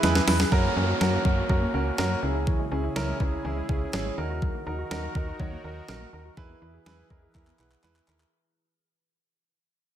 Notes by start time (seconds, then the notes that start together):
Already playing: E3 E4 G#4 B4
0.03 E2 G#3 E4 G#4 B4, snare, closed hi-hat
0.15 B3, snare
0.28 E2 E4 G#4 B4, snare, open hi-hat
0.40 G#4, snare
0.52 F#2 F#3 A#3 C#4 F#4 A#4, kick, downlifter
0.64 A#3
0.76 F#2 C#4 F#4 A#4
0.89 F#4
1.01 F#2 F#3 C#4 F#4 A#4, snare
1.13 A#3
1.25 F#2 C#4 F#4 A#4, kick
1.37 F#4
1.49 F#2 F#3 C#4 F#4 A#4, kick
1.62 A#3
1.74 C#2 C#4 F#4 A#4
1.98 F#2 F#3 C#4 F#4 A#4, snare
2.11 A#3
2.23 C#2 C#3 C#4 E4 G#4
2.35 E4
2.47 E3, kick
2.59 G#3
2.71 C#2 C#4 E4 G#4
2.84 E4
2.96 C#2 E3 C#4 E4 A#4, snare
3.08 G#3
3.20 C#2 C#4 E4 G#4, kick
3.32 E4
3.45 C#2 E3 C#4 E4 G#4
3.57 G#3
3.69 C#2 C#4 E4 G#4, kick
3.93 G#1 E3 C#4 E4 G#4, snare
4.06 G#3
4.18 D#2 D#3 D#4 F#4 A#4
4.30 F#4
4.42 F#3, kick
4.54 A#3
4.67 D#2 D#4 F#4 A#4
4.79 F#4
4.91 D#2 F#3 D#4 F#4 A#4, snare
5.03 A#3
5.15 D#2 D#4 F#4 A#4, kick
5.27 F#4
5.40 D#2 F#3 D#4 F#4 C#5, kick
5.52 A#3
5.64 D#2 D#4 F#4 A#4
5.88 A#1 F#3 D#4 F#4 A#4, snare
6.01 A#3
6.13 D#2 D#4 F#4 A#4
6.25 F#4
6.37 E2 E3 G#3 E4 G#4 B4, kick
6.49 B3
6.62 E2 E4 G#4 B4
6.74 G#4
6.86 E2 G#3 E4 G#4 B4, snare
6.98 B3
7.10 E2 E4 G#4 A#4 D#5, kick
7.23 G#4
7.35 E2 G#3 E4 G#4 A#4 E5, kick, clap
7.47 B3, clap
7.59 B1 E4 G#4 B4 F#5, clap
7.71 clap
7.84 E2 G#3 E4 G#4 B4 G#5, clap
7.96 B3, clap
8.08 D#2 E4 G#4 A#4 B5, clap
8.20 G#4, clap